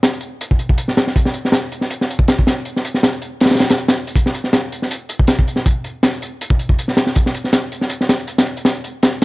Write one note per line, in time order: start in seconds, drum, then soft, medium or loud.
0.03 snare loud
0.03 closed hi-hat medium
0.13 closed hi-hat soft
0.21 closed hi-hat medium
0.41 closed hi-hat medium
0.51 kick medium
0.59 closed hi-hat medium
0.69 kick medium
0.78 closed hi-hat medium
0.88 snare soft
0.97 snare loud
0.97 closed hi-hat medium
1.07 snare medium
1.16 kick loud
1.16 closed hi-hat medium
1.25 snare medium
1.34 closed hi-hat medium
1.45 snare soft
1.52 snare loud
1.52 closed hi-hat medium
1.72 closed hi-hat medium
1.81 snare soft
1.90 closed hi-hat medium
2.01 snare soft
2.10 closed hi-hat medium
2.19 kick loud
2.28 snare loud
2.28 closed hi-hat medium
2.39 kick medium
2.47 snare medium
2.47 closed hi-hat medium
2.65 closed hi-hat medium
2.76 snare soft
2.85 closed hi-hat medium
2.94 snare soft
3.03 snare loud
3.03 closed hi-hat medium
3.13 closed hi-hat soft
3.22 closed hi-hat medium
3.41 snare medium
3.41 closed hi-hat medium
3.46 snare loud
3.46 closed hi-hat medium
3.50 snare medium
3.50 closed hi-hat medium
3.55 snare medium
3.55 closed hi-hat medium
3.59 snare loud
3.59 closed hi-hat medium
3.69 snare loud
3.69 closed hi-hat medium
3.78 closed hi-hat medium
3.88 snare loud
3.88 closed hi-hat medium
3.97 closed hi-hat soft
4.07 closed hi-hat medium
4.16 kick loud
4.16 closed hi-hat medium
4.26 snare medium
4.34 closed hi-hat medium
4.44 snare soft
4.53 snare loud
4.53 closed hi-hat medium
4.72 closed hi-hat medium
4.82 snare soft
4.91 closed hi-hat medium
5.09 closed hi-hat medium
5.19 kick medium
5.27 snare loud
5.27 closed hi-hat loud
5.39 kick medium
5.48 closed hi-hat medium
5.56 snare soft
5.66 kick loud
5.66 closed hi-hat medium
5.84 closed hi-hat medium
6.03 snare loud
6.03 closed hi-hat medium
6.13 closed hi-hat soft
6.22 closed hi-hat medium
6.41 closed hi-hat medium
6.50 kick loud
6.59 closed hi-hat medium
6.69 kick medium
6.79 closed hi-hat medium
6.88 snare soft
6.97 snare loud
6.97 closed hi-hat medium
7.07 snare medium
7.15 kick loud
7.15 closed hi-hat medium
7.26 snare medium
7.35 closed hi-hat medium
7.44 snare soft
7.53 snare loud
7.53 closed hi-hat loud
7.72 closed hi-hat medium
7.81 snare soft
7.90 closed hi-hat medium
8.01 snare soft
8.09 snare loud
8.09 closed hi-hat medium
8.19 closed hi-hat soft
8.27 closed hi-hat medium
8.38 snare loud
8.38 closed hi-hat medium
8.46 closed hi-hat soft
8.57 closed hi-hat medium
8.65 snare loud
8.65 closed hi-hat medium
8.75 closed hi-hat soft
8.84 closed hi-hat medium
9.03 snare loud
9.03 closed hi-hat medium
9.13 closed hi-hat soft